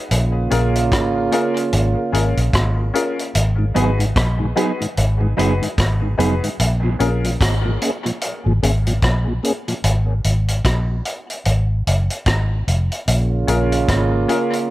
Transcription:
0.11 fingered electric bass A#1, trombone section C#3 A#3 F4, closed hi-hat
0.50 fingered electric bass A#1, upright piano C#4 F4 G#4 A#4, closed hi-hat
0.76 closed hi-hat
0.92 fingered electric bass G#1, kick, cross-stick, closed hi-hat
1.32 upright piano C#4 F4 G#4 A#4, closed hi-hat
1.57 closed hi-hat
1.73 fingered electric bass G#1, closed hi-hat
1.97 upright piano G#4 A#4
2.12 fingered electric bass G#1, upright piano C#4 F4 G#4 A#4, closed hi-hat
2.37 fingered electric bass A#1, closed hi-hat
2.53 fingered electric bass G#1, kick, cross-stick, closed hi-hat
2.94 upright piano C#4 F4 G#4 A#4, closed hi-hat
3.19 closed hi-hat
3.35 fingered electric bass G#1, closed hi-hat
3.58 tonewheel organ G#2 D#3
3.74 fingered electric bass G#1, clean electric guitar F#3 B3 D#4 G#4, tonewheel organ B3 F#4 G#4, upright piano D#4 F#4 G#4 B4, closed hi-hat
3.99 tonewheel organ G#2 D#3, closed hi-hat
4.16 fingered electric bass A#1, kick, cross-stick, closed hi-hat
4.39 tonewheel organ G#2 D#3
4.56 clean electric guitar F#3 B3 D#4 G#4, tonewheel organ B3 F#4 G#4, upright piano D#4 F#4 G#4 B4, closed hi-hat
4.80 tonewheel organ G#2 D#3, closed hi-hat
4.97 fingered electric bass G#1, closed hi-hat
5.21 tonewheel organ G#2 D#3, upright piano G#4 B4
5.37 fingered electric bass F#1, clean electric guitar F#3 B3 D#4 G#4, tonewheel organ B3 F#4 G#4, upright piano D#4 F#4 G#4 B4, closed hi-hat
5.61 tonewheel organ G#2 D#3, closed hi-hat
5.78 fingered electric bass G#1, kick, cross-stick, closed hi-hat
6.02 tonewheel organ G#2 D#3
6.18 fingered electric bass F1, clean electric guitar F#3 B3 D#4 G#4, tonewheel organ B3 F#4 G#4, upright piano D#4 F#4 G#4 B4, closed hi-hat
6.43 tonewheel organ G#2 D#3, closed hi-hat
6.60 fingered electric bass A#1, closed hi-hat
6.84 tonewheel organ A#2 F3
6.99 fingered electric bass A#1, tonewheel organ A#3 C#4 G#4, upright piano C#4 F4 G#4 A#4, closed hi-hat
7.24 tonewheel organ A#2 F3, closed hi-hat
7.41 fingered electric bass G#1, kick, cross-stick, closed hi-hat
7.65 tonewheel organ A#2 F3
7.82 tonewheel organ A#3 C#4 G#4, closed hi-hat
8.05 tonewheel organ A#2 F3, closed hi-hat
8.21 closed hi-hat
8.46 fingered electric bass G#1, tonewheel organ A#2 F3
8.63 fingered electric bass G#1, tonewheel organ A#3 C#4 G#4, closed hi-hat
8.87 tonewheel organ A#2 F3, closed hi-hat
9.02 fingered electric bass A#1, kick, cross-stick, closed hi-hat
9.27 tonewheel organ A#2 F3
9.43 tonewheel organ A#3 C#4 G#4, closed hi-hat
9.68 tonewheel organ A#2 F3, closed hi-hat
9.84 fingered electric bass G#1, closed hi-hat
10.24 fingered electric bass G#1, closed hi-hat
10.48 closed hi-hat
10.65 fingered electric bass A#1, kick, cross-stick, closed hi-hat
11.05 closed hi-hat
11.30 closed hi-hat
11.45 fingered electric bass G#1, closed hi-hat
11.87 fingered electric bass F#1, closed hi-hat
12.10 closed hi-hat
12.26 fingered electric bass G#1, kick, cross-stick, closed hi-hat
12.68 fingered electric bass F1, closed hi-hat
12.92 closed hi-hat
13.08 fingered electric bass A#1, trombone section C#3 A#3 F4, closed hi-hat
13.47 fingered electric bass A#1, upright piano C#4 F4 G#4 A#4, closed hi-hat
13.72 closed hi-hat
13.88 fingered electric bass G#1, kick, cross-stick, closed hi-hat
14.28 upright piano C#4 F4 G#4 A#4, closed hi-hat
14.53 closed hi-hat

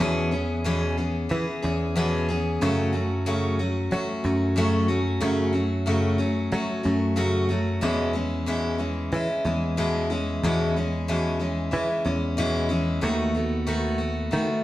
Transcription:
0.00 steel-string acoustic guitar E2 B2 E3 B3 C#4 G#4, picked electric bass E2
0.31 steel-string acoustic guitar E3 B3 C#4 G#4
0.64 steel-string acoustic guitar E2 B2 E3 B3 C#4 G#4
0.97 steel-string acoustic guitar E3 B3 C#4 G#4
1.29 steel-string acoustic guitar E3 B3 C#4 G#4, picked electric bass E3
1.62 picked electric bass E2, steel-string acoustic guitar E3 B3 C#4 G#4
1.96 steel-string acoustic guitar E2 B2 E3 B3 C#4 G#4
2.29 steel-string acoustic guitar E3 B3 C#4 G#4
2.61 steel-string acoustic guitar F#2 C#3 F#3 A3 C#4 F#4, picked electric bass F#2
2.93 steel-string acoustic guitar F#3 A3 C#4 F#4
3.26 steel-string acoustic guitar F#2 C#3 F#3 A3 C#4 F#4
3.59 steel-string acoustic guitar F#3 C#4 F#4
3.91 steel-string acoustic guitar F#3 A3 C#4 F#4, picked electric bass F#3
4.24 picked electric bass F#2, steel-string acoustic guitar F#3 A3 C#4 F#4
4.56 steel-string acoustic guitar F#2 C#3 F#3 A3 C#4 F#4
4.88 steel-string acoustic guitar F#3 A3 C#4 F#4
5.20 steel-string acoustic guitar F#2 C#3 F#3 A3 C#4 F#4, picked electric bass F#2
5.53 steel-string acoustic guitar F#3 A3 C#4 F#4
5.86 steel-string acoustic guitar F#2 C#3 F#3 A3 C#4 F#4
6.18 steel-string acoustic guitar F#3 A3 C#4 F#4
6.52 steel-string acoustic guitar F#3 A3 C#4 F#4, picked electric bass F#3
6.83 picked electric bass F#2, steel-string acoustic guitar F#3 A3 C#4 F#4
7.16 steel-string acoustic guitar F#2 C#3 F#3 A3 C#4 F#4
7.49 steel-string acoustic guitar F#3 A3 C#4 F#4
7.81 steel-string acoustic guitar E2 B2 E3 G#3 C#4 E4, picked electric bass E2
8.13 steel-string acoustic guitar E3 G#3 C#4 E4
8.46 steel-string acoustic guitar E2 B2 E3 G#3 C#4 E4
8.78 steel-string acoustic guitar E3 G#3 C#4 E4
9.12 steel-string acoustic guitar E3 G#3 C#4 E4, picked electric bass E3
9.45 picked electric bass E2, steel-string acoustic guitar E3 G#3 C#4 E4
9.77 steel-string acoustic guitar E2 B2 E3 G#3 C#4 E4
10.10 steel-string acoustic guitar E3 G#3 C#4 E4
10.43 steel-string acoustic guitar E2 B2 E3 G#3 C#4 E4, picked electric bass E2
10.76 steel-string acoustic guitar E3 G#3 C#4 E4
11.08 steel-string acoustic guitar E2 B2 E3 G#3 C#4 E4
11.39 steel-string acoustic guitar E3 G#3 C#4 E4
11.71 steel-string acoustic guitar E3 G#3 C#4 E4, picked electric bass E3
12.04 picked electric bass E2, steel-string acoustic guitar E3 G#3 C#4 E4
12.37 steel-string acoustic guitar E2 B2 E3 G#3 C#4 E4
12.69 steel-string acoustic guitar E3 G#3 C#4 E4
13.01 picked electric bass D#2, steel-string acoustic guitar D#3 A3 B3 F#4
13.35 steel-string acoustic guitar A3 B3 F#4
13.67 steel-string acoustic guitar D#3 A3 B3 F#4
13.98 steel-string acoustic guitar A3 B3 F#4
14.31 steel-string acoustic guitar D#3 A3 B3 F#4, picked electric bass D#3

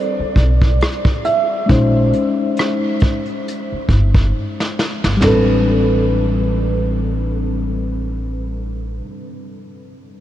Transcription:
Already playing: reed electric piano G3 C4 D4 A4, felt piano D5
0.19 muted upright bass stroke
0.36 upright bass B1, kick, closed hi-hat
0.61 kick
0.81 cross-stick, closed hi-hat
1.05 kick
1.25 felt piano E5, closed hi-hat
1.66 upright bass A#1, reed electric piano G#3 C#4 D#4, kick, closed hi-hat
1.71 reed electric piano C5
2.13 closed hi-hat
2.57 cross-stick, closed hi-hat
3.00 kick, closed hi-hat
3.25 closed hi-hat
3.48 closed hi-hat
3.72 muted upright bass stroke
3.89 upright bass G1, kick, closed hi-hat
4.14 kick
4.60 snare
4.79 snare
5.04 upright bass G1, snare
5.17 reed electric piano G3 C4
5.22 upright bass A1, reed electric piano D4, felt piano A4, snare, floor tom, ride bell
5.28 reed electric piano B4

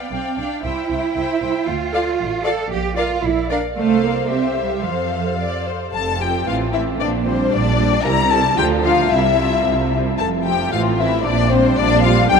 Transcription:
Already playing: cello section B3, violin section F5 G5
0.11 double bass section B1, cello section C4, viola section D5, violin section F5 G5
0.37 double bass section B1, cello section D4, viola section D5, violin section F5 G5
0.63 double bass section C2, cello section E4, viola section C5, violin section E5 G5
0.90 double bass section C2, viola section C5, violin section E5 G5
1.15 double bass section C2, viola section C5, violin section E5 G5
1.41 double bass section C2, viola section C5, violin section E5 G5
1.67 double bass section D2, cello section F4
1.92 viola section A4, violin section D5 F5
2.19 double bass section A1
2.45 viola section A4, cello section A4, violin section D5 F5
2.72 double bass section A#1, cello section G4
2.96 cello section F4, viola section A#4, violin section D5 F5
3.23 double bass section A#1, cello section E4
3.49 cello section D4, viola section A#4, violin section D5 F5
3.76 double bass section C2, cello section A3, viola section A4, violin section C5 F5
4.03 cello section A#3
4.29 cello section C4, viola section G4, violin section C5 E5
4.57 cello section G3
4.84 double bass section F2, cello section F3, viola section A4, violin section C5 F5
5.39 violin section D5
5.65 violin section C5
5.93 double bass section F1, cello section F2, violin section A4 A5
6.19 viola section F3 C4, violin section G4 G5
6.46 double bass section A1, cello section A2, viola section E3 C4, violin section F4 F5
6.72 viola section E3 C4, violin section E4 E5
6.99 double bass section A#1, cello section A#2, violin section D4 D5
7.25 viola section G3 D4, violin section C4 C5
7.51 double bass section A#1, cello section A#2, violin section D4 D5
7.77 viola section G3 D4
8.04 double bass section C2, cello section C3, viola section G3 E4, violin section A#4 A#5
8.30 viola section G3 E4, violin section A4 A5
8.57 double bass section D2, cello section D3, viola section F3 F4, violin section G4 G5
8.83 viola section F3 F4, violin section F4 F5
9.11 double bass section C2, cello section C3, viola section G3 C4, violin section E4 E5
9.38 viola section G3 C4
9.65 double bass section C2, cello section C3
9.93 viola section G3 C4
10.19 double bass section F1, cello section F2, violin section A4 A5
10.45 viola section F3 C4, violin section G4 G5
10.72 double bass section A1, cello section A2, viola section E3 C4, violin section F4 F5
10.99 viola section E3 C4, violin section E4 E5
11.24 double bass section A#1, cello section A#2, violin section D4 D5
11.51 viola section G3 D4, violin section C4 C5
11.77 double bass section A#1, cello section A#2, violin section D4 D5
12.03 viola section G3 D4, violin section F4 F5
12.30 double bass section B1, cello section B2, viola section G3 D4, violin section G4 G5

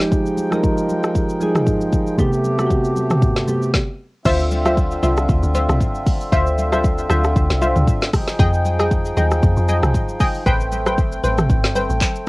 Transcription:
Already playing: synth keys F3 G#3 D#4 G4, harmonium F3 G#3 D#4 G5
0.00 snare, shaker
0.12 kick, low conga, shaker
0.26 shaker
0.37 high conga, shaker
0.51 synth keys F3 G#3 D#4 A#4, cross-stick, high conga, shaker
0.64 kick, shaker
0.78 shaker
0.89 high conga, shaker
1.03 cross-stick, shaker
1.15 kick, shaker
1.29 shaker
1.40 synth keys F3 G#3 D#4 G#4, high conga, shaker
1.55 cross-stick, mid tom, shaker
1.67 kick, high conga, shaker
1.81 shaker
1.93 kick, high conga, low conga, shaker
2.07 shaker
2.18 synth keys C3 A3 B3 G4, harmonium C3 A3 G4, kick, low conga, shaker
2.33 shaker
2.44 high conga, shaker
2.58 synth keys C3 A3 B3 F#4, cross-stick, high conga, shaker
2.67 synth keys G4, kick, shaker
2.85 shaker
2.96 high conga, shaker
3.10 cross-stick, mid tom, shaker
3.22 kick, low conga, shaker
3.36 snare, shaker
3.47 synth keys C3 A3 B3 G4, high conga, shaker
3.62 shaker
3.74 kick, snare
4.25 log drum bass D2, harmonium D3 C4 F4 E5, synth stab F4 C5 E5, kick, crash, low conga, shaker
4.40 shaker
4.51 high conga, shaker
4.65 synth stab F4 C5 E5, cross-stick, high conga, shaker
4.77 kick, shaker
4.91 shaker
5.03 log drum bass C2, synth stab F4 C5 E5, high conga, shaker
5.17 cross-stick, shaker
5.29 log drum bass D2, kick, low conga, shaker
5.43 log drum bass D2, shaker
5.55 synth stab F4 C5 E5, high conga, shaker
5.69 log drum bass C2, cross-stick, mid tom, shaker
5.80 kick, high conga, shaker
5.95 shaker
6.06 kick, open hi-hat, high conga, low conga, shaker
6.21 shaker
6.32 log drum bass D2, synth stab F4 C5 E5, kick, low conga, shaker
6.47 shaker
6.58 high conga, shaker
6.72 synth stab F4 C5 E5, cross-stick, high conga, shaker
6.84 kick, shaker
6.98 shaker
7.10 log drum bass D2, synth stab F4 C5 E5, cross-stick, high conga, shaker
7.24 cross-stick, shaker
7.36 log drum bass D2, kick, low conga, shaker
7.50 log drum bass C2, snare, shaker
7.61 synth stab F4 C5 E5, high conga, shaker
7.76 log drum bass D2, mid tom, shaker
7.87 kick, high conga, shaker
8.02 snare, shaker
8.13 harmonium F3 D#4 G#4 G5, kick, cross-stick, open hi-hat, high conga, low conga, shaker
8.28 snare, shaker
8.39 log drum bass F2, synth stab G#4 D#5 G5, kick, low conga, shaker
8.54 shaker
8.65 high conga, shaker
8.79 synth stab G#4 D#5 G5, cross-stick, high conga, shaker
8.91 kick, shaker
9.05 shaker
9.17 log drum bass D#2, synth stab G#4 D#5 G5, high conga, shaker
9.31 cross-stick, shaker
9.43 log drum bass F2, kick, low conga, shaker
9.57 log drum bass F2, shaker
9.68 synth stab G#4 D#5 G5, high conga, shaker
9.83 log drum bass C2, cross-stick, mid tom, shaker
9.94 kick, high conga, shaker
10.09 shaker
10.20 synth stab G#4 D#5 G5, kick, open hi-hat, high conga, low conga, shaker
10.35 shaker
10.46 log drum bass A1, harmonium A3 C4, synth stab B4 C5 G5, kick, low conga, shaker
10.61 shaker
10.72 high conga, shaker
10.86 synth stab B4 C5 G5, cross-stick, high conga, shaker
10.98 kick, shaker
11.12 shaker
11.24 log drum bass A1, synth stab B4 C5 G5, high conga, shaker
11.38 cross-stick, mid tom, shaker
11.50 log drum bass A1, kick, low conga, shaker
11.64 log drum bass G1, snare, shaker
11.75 synth stab B4 C5 G5, high conga, shaker
11.90 log drum bass A1, shaker
12.01 kick, clap, high conga, shaker
12.16 shaker

